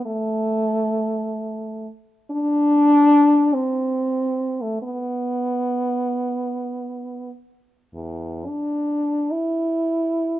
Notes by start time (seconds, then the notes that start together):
0.06 A3
2.31 D4
3.54 C4
4.61 A3
4.82 B3
7.94 E2
8.47 D4
9.31 E4